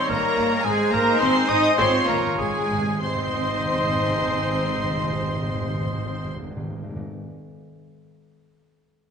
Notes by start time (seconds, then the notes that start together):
Already playing: G#2 G3 C4 D#4 C#5 C6
0.10 G#1 A#3 A#4 A#5
0.38 G#1
0.64 G#1 G#3 D#4 G#4 C5 G#5
0.92 G#1 A#3 A#4 A#5
1.20 G#1 C4 C5 C6
1.48 G#1 D#4 D#5 D#6
1.77 G#1 G#2 C4 F4 C5 C#5 C6
1.86 G#2
1.94 G#2
2.02 G#2
2.07 G#1 G#2 A#3 A#4 A#5
2.19 G#2
2.26 G#2
2.35 G#2 G#3 G#4 G#5
2.39 G#1
2.43 G#2
2.52 G#2
2.60 G#2
2.69 G#1 G#2
2.78 G#2
2.87 G#2
3.02 G#1 G#2 G#3 C4 D#4 C5 D#5 C6
3.09 G#2
3.15 G#2
3.21 G#2
3.27 G#2
3.34 G#2
3.40 G#2
3.46 G#2
3.53 G#2
3.59 G#2
3.65 G#2
3.71 G#2
3.77 G#2
3.83 G#2
3.89 G#2
3.96 G#2
4.03 G#2
4.09 G#2
4.15 G#2
4.22 G#2
4.28 G#2
4.34 G#2
4.40 G#2
4.46 G#2
4.53 G#2
4.59 G#2
4.65 G#2
4.72 G#2
4.78 G#2
4.84 G#2
4.91 G#2
4.97 G#2
5.04 G#2
5.10 G#2
5.16 G#2
5.23 G#2
5.30 G#2
5.36 G#2
5.43 G#2
5.49 G#2
5.55 G#2
5.62 G#2
5.68 G#2
5.74 G#2
5.81 G#2
5.86 G#2
5.92 G#2
5.99 G#2
6.06 G#2
6.12 G#2
6.18 G#2
6.25 G#2
6.31 G#2
6.37 G#2
6.44 G#2
6.50 G#2
6.57 G#2
6.63 G#2
6.70 G#2
6.76 G#2
6.83 G#2
6.89 G#2
6.96 G#2